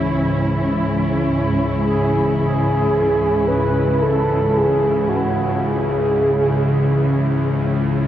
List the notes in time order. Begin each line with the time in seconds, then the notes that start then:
Already playing: C#2 G#2 C#3 E3 C#4 E4
1.84 G#4
2.39 G#4
3.48 B4
4.02 A4
4.57 G#4
5.09 F#4
5.67 G#4